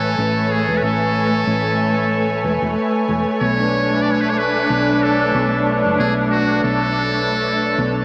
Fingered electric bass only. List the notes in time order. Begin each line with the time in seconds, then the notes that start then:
Already playing: A1
0.18 A1
0.68 E1
0.82 A1
1.47 A1
2.44 E1
2.62 E1
3.09 E1
3.41 B1
4.70 B1
5.34 B1
5.85 F#1
5.99 B1
6.64 B1
7.78 B1